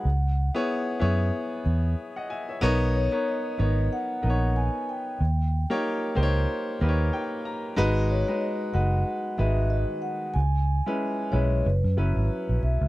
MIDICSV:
0, 0, Header, 1, 4, 480
1, 0, Start_track
1, 0, Key_signature, 5, "major"
1, 0, Tempo, 644468
1, 32, Time_signature, 4, 2, 24, 8
1, 9594, End_track
2, 0, Start_track
2, 0, Title_t, "Vibraphone"
2, 0, Program_c, 0, 11
2, 0, Note_on_c, 0, 78, 81
2, 723, Note_off_c, 0, 78, 0
2, 2203, Note_on_c, 0, 73, 78
2, 2443, Note_off_c, 0, 73, 0
2, 2445, Note_on_c, 0, 75, 83
2, 2925, Note_on_c, 0, 78, 94
2, 2931, Note_off_c, 0, 75, 0
2, 3399, Note_on_c, 0, 80, 98
2, 3411, Note_off_c, 0, 78, 0
2, 3641, Note_off_c, 0, 80, 0
2, 3642, Note_on_c, 0, 79, 85
2, 4565, Note_off_c, 0, 79, 0
2, 6038, Note_on_c, 0, 73, 81
2, 6257, Note_off_c, 0, 73, 0
2, 6265, Note_on_c, 0, 75, 83
2, 6490, Note_off_c, 0, 75, 0
2, 6507, Note_on_c, 0, 78, 92
2, 6958, Note_off_c, 0, 78, 0
2, 6985, Note_on_c, 0, 76, 79
2, 7225, Note_on_c, 0, 75, 99
2, 7235, Note_off_c, 0, 76, 0
2, 7462, Note_on_c, 0, 78, 87
2, 7475, Note_off_c, 0, 75, 0
2, 7699, Note_on_c, 0, 80, 101
2, 7714, Note_off_c, 0, 78, 0
2, 8429, Note_on_c, 0, 73, 89
2, 8448, Note_off_c, 0, 80, 0
2, 8675, Note_on_c, 0, 71, 77
2, 8678, Note_off_c, 0, 73, 0
2, 9366, Note_off_c, 0, 71, 0
2, 9406, Note_on_c, 0, 76, 74
2, 9594, Note_off_c, 0, 76, 0
2, 9594, End_track
3, 0, Start_track
3, 0, Title_t, "Grand piano"
3, 0, Program_c, 1, 0
3, 0, Control_c, 1, 64, 127
3, 42, Control_c, 1, 64, 0
3, 184, Control_c, 1, 64, 127
3, 406, Note_on_c, 1, 59, 87
3, 407, Note_on_c, 1, 64, 76
3, 409, Note_on_c, 1, 68, 76
3, 415, Note_on_c, 1, 73, 99
3, 725, Note_off_c, 1, 59, 0
3, 725, Note_off_c, 1, 64, 0
3, 726, Note_off_c, 1, 68, 0
3, 729, Note_off_c, 1, 73, 0
3, 742, Note_on_c, 1, 59, 80
3, 747, Note_on_c, 1, 64, 77
3, 748, Note_on_c, 1, 68, 77
3, 755, Note_on_c, 1, 73, 93
3, 1194, Note_off_c, 1, 59, 0
3, 1196, Note_off_c, 1, 64, 0
3, 1197, Note_off_c, 1, 68, 0
3, 1200, Note_off_c, 1, 73, 0
3, 1612, Note_on_c, 1, 78, 62
3, 1619, Note_on_c, 1, 75, 55
3, 1706, Note_off_c, 1, 78, 0
3, 1710, Note_off_c, 1, 75, 0
3, 1713, Note_on_c, 1, 80, 65
3, 1717, Note_on_c, 1, 76, 54
3, 1842, Note_off_c, 1, 76, 0
3, 1844, Note_off_c, 1, 80, 0
3, 1853, Note_on_c, 1, 76, 59
3, 1858, Note_on_c, 1, 73, 49
3, 1945, Note_on_c, 1, 59, 116
3, 1947, Note_off_c, 1, 73, 0
3, 1951, Note_on_c, 1, 63, 98
3, 1955, Note_on_c, 1, 70, 103
3, 1958, Note_on_c, 1, 73, 116
3, 1961, Control_c, 1, 64, 0
3, 2079, Note_off_c, 1, 76, 0
3, 2088, Control_c, 1, 64, 127
3, 2293, Note_off_c, 1, 59, 0
3, 2296, Note_off_c, 1, 63, 0
3, 2298, Note_off_c, 1, 70, 0
3, 2300, Note_off_c, 1, 73, 0
3, 2324, Note_on_c, 1, 59, 77
3, 2328, Note_on_c, 1, 63, 64
3, 2329, Note_on_c, 1, 70, 67
3, 2336, Note_on_c, 1, 73, 77
3, 2643, Note_off_c, 1, 59, 0
3, 2645, Note_off_c, 1, 63, 0
3, 2645, Note_off_c, 1, 70, 0
3, 2649, Note_off_c, 1, 73, 0
3, 2669, Note_on_c, 1, 59, 74
3, 2673, Note_on_c, 1, 63, 62
3, 2674, Note_on_c, 1, 70, 65
3, 2677, Note_on_c, 1, 73, 78
3, 3116, Note_off_c, 1, 59, 0
3, 3119, Note_off_c, 1, 63, 0
3, 3119, Note_off_c, 1, 70, 0
3, 3121, Note_off_c, 1, 73, 0
3, 3143, Note_on_c, 1, 59, 63
3, 3148, Note_on_c, 1, 63, 69
3, 3149, Note_on_c, 1, 70, 62
3, 3152, Note_on_c, 1, 71, 59
3, 3201, Note_on_c, 1, 73, 82
3, 3207, Note_off_c, 1, 71, 0
3, 3866, Note_off_c, 1, 59, 0
3, 3868, Note_off_c, 1, 63, 0
3, 3869, Note_off_c, 1, 70, 0
3, 3880, Control_c, 1, 64, 0
3, 3895, Note_off_c, 1, 73, 0
3, 4013, Control_c, 1, 64, 127
3, 4245, Note_on_c, 1, 58, 88
3, 4248, Note_on_c, 1, 63, 83
3, 4249, Note_on_c, 1, 67, 81
3, 4253, Note_on_c, 1, 73, 96
3, 4563, Note_off_c, 1, 58, 0
3, 4565, Note_off_c, 1, 63, 0
3, 4565, Note_off_c, 1, 67, 0
3, 4567, Note_off_c, 1, 73, 0
3, 4582, Note_on_c, 1, 58, 87
3, 4585, Note_on_c, 1, 63, 76
3, 4587, Note_on_c, 1, 67, 75
3, 4592, Note_on_c, 1, 72, 79
3, 4638, Note_on_c, 1, 73, 99
3, 4647, Note_off_c, 1, 72, 0
3, 5033, Note_off_c, 1, 58, 0
3, 5034, Note_off_c, 1, 63, 0
3, 5035, Note_off_c, 1, 67, 0
3, 5061, Note_off_c, 1, 73, 0
3, 5073, Note_on_c, 1, 58, 85
3, 5074, Note_on_c, 1, 63, 70
3, 5079, Note_on_c, 1, 67, 75
3, 5081, Note_on_c, 1, 71, 75
3, 5129, Note_on_c, 1, 73, 87
3, 5131, Note_off_c, 1, 71, 0
3, 5311, Note_on_c, 1, 79, 75
3, 5533, Note_off_c, 1, 79, 0
3, 5551, Note_on_c, 1, 82, 66
3, 5742, Note_off_c, 1, 58, 0
3, 5742, Note_off_c, 1, 63, 0
3, 5745, Note_off_c, 1, 67, 0
3, 5770, Note_off_c, 1, 73, 0
3, 5773, Note_off_c, 1, 82, 0
3, 5782, Note_on_c, 1, 56, 106
3, 5787, Note_on_c, 1, 63, 101
3, 5792, Note_on_c, 1, 66, 103
3, 5793, Note_on_c, 1, 71, 125
3, 5799, Control_c, 1, 64, 0
3, 5922, Control_c, 1, 64, 127
3, 6131, Note_off_c, 1, 56, 0
3, 6133, Note_off_c, 1, 63, 0
3, 6136, Note_off_c, 1, 66, 0
3, 6136, Note_off_c, 1, 71, 0
3, 6166, Note_on_c, 1, 56, 79
3, 6169, Note_on_c, 1, 63, 71
3, 6175, Note_on_c, 1, 66, 66
3, 6176, Note_on_c, 1, 71, 80
3, 6484, Note_off_c, 1, 56, 0
3, 6485, Note_off_c, 1, 63, 0
3, 6488, Note_off_c, 1, 66, 0
3, 6488, Note_off_c, 1, 71, 0
3, 6505, Note_on_c, 1, 56, 67
3, 6508, Note_on_c, 1, 63, 66
3, 6512, Note_on_c, 1, 66, 64
3, 6514, Note_on_c, 1, 71, 80
3, 6955, Note_off_c, 1, 56, 0
3, 6956, Note_off_c, 1, 63, 0
3, 6958, Note_off_c, 1, 66, 0
3, 6959, Note_off_c, 1, 71, 0
3, 6985, Note_on_c, 1, 56, 73
3, 6989, Note_on_c, 1, 51, 71
3, 6992, Note_on_c, 1, 66, 67
3, 6994, Note_on_c, 1, 71, 80
3, 7708, Note_off_c, 1, 56, 0
3, 7710, Note_off_c, 1, 51, 0
3, 7712, Note_off_c, 1, 66, 0
3, 7712, Note_off_c, 1, 71, 0
3, 7719, Control_c, 1, 64, 0
3, 7841, Control_c, 1, 64, 127
3, 8090, Note_on_c, 1, 56, 70
3, 8094, Note_on_c, 1, 61, 65
3, 8099, Note_on_c, 1, 64, 62
3, 8100, Note_on_c, 1, 71, 81
3, 8407, Note_off_c, 1, 56, 0
3, 8409, Note_off_c, 1, 61, 0
3, 8411, Note_off_c, 1, 64, 0
3, 8412, Note_off_c, 1, 71, 0
3, 8430, Note_on_c, 1, 56, 73
3, 8433, Note_on_c, 1, 61, 61
3, 8438, Note_on_c, 1, 64, 72
3, 8439, Note_on_c, 1, 71, 76
3, 8671, Note_off_c, 1, 56, 0
3, 8673, Note_off_c, 1, 61, 0
3, 8675, Note_off_c, 1, 64, 0
3, 8676, Note_off_c, 1, 71, 0
3, 8682, Control_c, 1, 64, 0
3, 8809, Control_c, 1, 64, 127
3, 8915, Note_on_c, 1, 54, 64
3, 8917, Note_on_c, 1, 64, 66
3, 8919, Note_on_c, 1, 61, 63
3, 8922, Note_on_c, 1, 71, 76
3, 9587, Note_off_c, 1, 54, 0
3, 9589, Note_off_c, 1, 61, 0
3, 9589, Note_off_c, 1, 64, 0
3, 9591, Note_off_c, 1, 71, 0
3, 9594, End_track
4, 0, Start_track
4, 0, Title_t, "Fingered electric bass"
4, 0, Program_c, 2, 33
4, 38, Note_on_c, 2, 37, 98
4, 367, Note_off_c, 2, 37, 0
4, 760, Note_on_c, 2, 42, 86
4, 966, Note_off_c, 2, 42, 0
4, 1235, Note_on_c, 2, 40, 90
4, 1443, Note_off_c, 2, 40, 0
4, 1956, Note_on_c, 2, 35, 104
4, 2285, Note_off_c, 2, 35, 0
4, 2678, Note_on_c, 2, 32, 87
4, 2884, Note_off_c, 2, 32, 0
4, 3159, Note_on_c, 2, 34, 99
4, 3486, Note_off_c, 2, 34, 0
4, 3877, Note_on_c, 2, 39, 93
4, 4205, Note_off_c, 2, 39, 0
4, 4596, Note_on_c, 2, 37, 85
4, 4802, Note_off_c, 2, 37, 0
4, 5076, Note_on_c, 2, 39, 89
4, 5282, Note_off_c, 2, 39, 0
4, 5797, Note_on_c, 2, 32, 105
4, 6125, Note_off_c, 2, 32, 0
4, 6514, Note_on_c, 2, 30, 84
4, 6722, Note_off_c, 2, 30, 0
4, 6996, Note_on_c, 2, 32, 94
4, 7325, Note_off_c, 2, 32, 0
4, 7713, Note_on_c, 2, 37, 106
4, 8044, Note_off_c, 2, 37, 0
4, 8440, Note_on_c, 2, 35, 78
4, 8647, Note_off_c, 2, 35, 0
4, 8684, Note_on_c, 2, 30, 111
4, 8801, Note_off_c, 2, 30, 0
4, 8819, Note_on_c, 2, 42, 92
4, 8904, Note_off_c, 2, 42, 0
4, 8921, Note_on_c, 2, 30, 97
4, 9040, Note_off_c, 2, 30, 0
4, 9060, Note_on_c, 2, 32, 86
4, 9145, Note_off_c, 2, 32, 0
4, 9303, Note_on_c, 2, 34, 87
4, 9387, Note_off_c, 2, 34, 0
4, 9405, Note_on_c, 2, 35, 83
4, 9522, Note_off_c, 2, 35, 0
4, 9543, Note_on_c, 2, 37, 89
4, 9594, Note_off_c, 2, 37, 0
4, 9594, End_track
0, 0, End_of_file